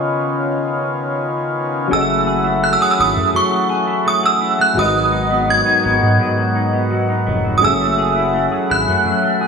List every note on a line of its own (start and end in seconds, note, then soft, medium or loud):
0.00 1.85 C#3 medium
0.00 1.88 D#3 medium
0.00 1.88 B3 medium
0.00 1.86 C#4 medium
0.00 1.88 C#4 medium
0.00 1.87 F4 medium
0.00 1.88 F4 medium
0.00 1.88 B4 medium
0.00 1.89 D#5 medium
1.88 2.77 F#1 loud
1.88 4.74 E3 medium
1.88 4.71 F#3 medium
1.88 3.33 F#3 medium
1.88 9.48 F#3 medium
1.88 4.74 A3 medium
1.88 4.72 C#4 medium
1.88 9.48 F#4 medium
1.88 4.73 G#4 medium
1.93 4.74 A4 medium
1.93 1.99 D#5 medium
1.93 2.65 E6 loud
2.01 4.78 E5 medium
2.09 2.61 A3 medium
2.27 2.80 G#4 medium
2.44 2.97 E4 medium
2.62 3.15 A3 medium
2.62 2.72 F#6 medium
2.73 2.81 E6 medium
2.80 3.69 G#4 medium
2.80 2.90 D#6 medium
2.91 2.93 E6 medium
2.91 2.99 E6 medium
2.98 3.14 G#1 medium
2.98 3.86 E4 medium
2.98 3.33 D#6 medium
3.16 3.32 F#2 loud
3.16 3.50 A3 medium
3.34 4.94 F#3 medium
3.34 4.09 C#6 medium
3.52 4.04 A3 medium
3.69 4.23 G#4 medium
3.87 4.40 E4 medium
4.05 4.58 A3 medium
4.05 4.25 D#6 medium
4.23 4.98 G#4 medium
4.23 4.61 E6 medium
4.41 4.84 E4 medium
4.59 4.84 A3 medium
4.59 4.78 F#6 loud
4.73 5.62 G#1 loud
4.73 7.57 G#2 medium
4.73 6.18 G#2 medium
4.73 7.60 D#3 medium
4.73 7.58 G#3 medium
4.73 7.60 B3 medium
4.73 7.59 F#4 medium
4.79 7.59 B4 medium
4.79 7.60 D#5 medium
4.79 5.51 D#6 loud
4.95 5.48 F#3 medium
5.12 5.65 D#4 medium
5.30 5.82 B3 medium
5.48 6.01 F#3 medium
5.48 6.52 G#6 medium
5.66 6.54 D#4 medium
5.84 6.00 G#1 medium
5.84 6.72 B3 medium
6.02 6.18 G#2 medium
6.02 6.37 F#3 medium
6.19 7.69 G#2 medium
6.37 6.91 F#3 medium
6.55 7.08 D#4 medium
6.73 7.25 B3 medium
6.91 7.44 F#3 medium
7.09 7.70 D#4 medium
7.27 7.59 F1 medium
7.27 7.69 B3 medium
7.44 7.62 F#3 medium
7.58 9.48 F#3 medium
7.58 9.48 C#4 medium
7.58 7.63 D#6 medium
7.62 8.48 F#1 loud
7.62 9.48 E3 medium
7.62 9.05 F#3 medium
7.62 9.48 A3 medium
7.62 9.48 G#4 medium
7.62 9.48 A4 medium
7.62 8.74 E6 loud
7.67 9.48 E5 medium
7.80 8.33 A3 medium
7.98 8.51 G#4 medium
8.16 8.68 E4 medium
8.34 8.86 A3 medium
8.52 9.40 G#4 medium
8.69 8.86 G#1 medium
8.69 9.48 E4 medium
8.69 9.48 F#6 loud
8.87 9.04 F#2 loud
8.87 9.22 A3 medium
9.05 9.48 F#3 medium
9.23 9.48 A3 medium
9.41 9.48 G#4 medium